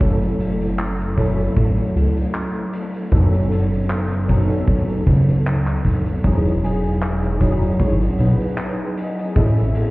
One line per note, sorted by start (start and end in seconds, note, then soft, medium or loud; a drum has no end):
0.00 1.49 F#1 loud
0.00 1.13 F#3 medium
0.00 1.13 A3 medium
0.00 1.13 C#4 medium
0.00 1.14 E4 medium
0.00 1.14 A4 loud
0.00 kick loud
0.00 closed hi-hat medium
0.22 closed hi-hat medium
0.40 closed hi-hat medium
0.61 closed hi-hat medium
0.78 clap loud
0.78 closed hi-hat medium
1.00 closed hi-hat soft
1.16 3.08 F#3 medium
1.16 3.08 A3 medium
1.16 3.08 C#4 medium
1.16 3.09 E4 medium
1.16 3.09 A4 loud
1.16 kick medium
1.16 closed hi-hat medium
1.39 closed hi-hat medium
1.57 1.87 A1 medium
1.57 kick loud
1.57 closed hi-hat medium
1.78 closed hi-hat soft
1.96 2.11 C#2 medium
1.96 closed hi-hat medium
2.17 closed hi-hat medium
2.34 clap loud
2.34 closed hi-hat medium
2.73 closed hi-hat medium
2.94 closed hi-hat medium
3.11 4.61 F#1 loud
3.11 4.24 F#3 medium
3.11 4.25 B3 medium
3.11 4.25 C#4 medium
3.11 4.26 D#4 medium
3.11 4.26 A4 loud
3.11 kick loud
3.11 closed hi-hat medium
3.34 closed hi-hat medium
3.52 closed hi-hat medium
3.73 closed hi-hat medium
3.90 clap loud
3.90 closed hi-hat medium
4.12 closed hi-hat soft
4.28 6.19 F#3 medium
4.28 6.20 B3 medium
4.28 6.20 C#4 medium
4.28 6.20 D#4 medium
4.28 6.21 A4 loud
4.28 kick medium
4.28 closed hi-hat medium
4.50 closed hi-hat medium
4.68 kick loud
4.68 closed hi-hat medium
4.89 closed hi-hat medium
5.07 6.17 C#2 loud
5.07 kick medium
5.07 closed hi-hat medium
5.29 closed hi-hat medium
5.46 clap loud
5.46 closed hi-hat medium
5.67 clap soft
5.67 closed hi-hat soft
5.85 kick medium
5.85 closed hi-hat medium
6.06 closed hi-hat medium
6.23 7.73 E1 loud
6.23 7.36 F#3 medium
6.23 7.36 C#4 medium
6.23 7.37 D#4 medium
6.23 7.37 E4 medium
6.23 7.38 G#4 loud
6.23 9.33 C#5 medium
6.23 9.33 F#5 medium
6.23 9.90 G#5 medium
6.23 9.33 D#6 medium
6.23 kick loud
6.23 closed hi-hat medium
6.45 closed hi-hat soft
6.64 7.43 G#4 medium
6.64 closed hi-hat medium
6.84 closed hi-hat medium
7.02 clap loud
7.02 closed hi-hat medium
7.23 closed hi-hat medium
7.40 9.31 F#3 medium
7.40 9.32 C#4 medium
7.40 9.32 D#4 medium
7.40 9.32 E4 medium
7.40 7.80 F#4 medium
7.40 9.33 G#4 loud
7.40 kick medium
7.40 closed hi-hat medium
7.62 closed hi-hat medium
7.80 8.10 G#1 medium
7.80 7.95 C#5 loud
7.80 kick loud
7.80 closed hi-hat medium
8.01 closed hi-hat medium
8.19 8.35 B1 medium
8.19 8.99 B4 loud
8.19 closed hi-hat medium
8.40 closed hi-hat medium
8.58 clap loud
8.58 closed hi-hat medium
8.97 9.38 D#5 loud
8.97 closed hi-hat medium
9.19 closed hi-hat medium
9.34 9.90 A1 loud
9.34 9.90 B3 medium
9.34 9.90 C#4 medium
9.34 9.90 E4 medium
9.34 9.90 G#4 medium
9.34 9.90 A4 loud
9.34 9.90 B4 medium
9.34 9.90 E5 medium
9.34 9.90 E5 loud
9.34 9.90 C#6 medium
9.34 kick loud
9.34 closed hi-hat medium
9.57 closed hi-hat medium
9.75 closed hi-hat medium